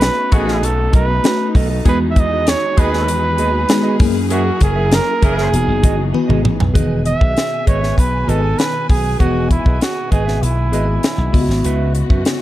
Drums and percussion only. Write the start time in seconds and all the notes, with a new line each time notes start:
0.01 snare, closed hi-hat
0.32 kick, closed hi-hat
0.48 snare
0.63 closed hi-hat
0.93 kick, closed hi-hat
1.24 snare, closed hi-hat
1.55 kick, open hi-hat
1.85 kick, closed hi-hat
2.16 kick, closed hi-hat
2.47 snare, closed hi-hat
2.77 kick, closed hi-hat
2.93 snare
3.08 closed hi-hat
3.38 closed hi-hat
3.69 snare, closed hi-hat
4.00 kick, open hi-hat
4.30 closed hi-hat
4.61 kick, closed hi-hat
4.91 snare, closed hi-hat
5.22 kick, closed hi-hat
5.38 snare
5.54 closed hi-hat
5.83 kick, closed hi-hat
6.14 high tom
6.30 mid tom
6.45 mid tom
6.60 floor tom
6.75 kick, closed hi-hat
7.06 closed hi-hat
7.21 kick
7.37 snare, closed hi-hat
7.67 kick, closed hi-hat
7.83 snare
7.98 kick, closed hi-hat
8.29 closed hi-hat
8.59 snare, closed hi-hat
8.90 kick, open hi-hat
9.20 kick, closed hi-hat
9.51 kick, closed hi-hat
9.66 kick
9.81 snare, closed hi-hat
10.12 kick, closed hi-hat
10.28 snare
10.43 closed hi-hat
10.73 closed hi-hat
11.03 snare, closed hi-hat
11.34 kick, open hi-hat
11.50 snare
11.64 closed hi-hat
11.95 closed hi-hat
12.10 kick
12.25 snare, closed hi-hat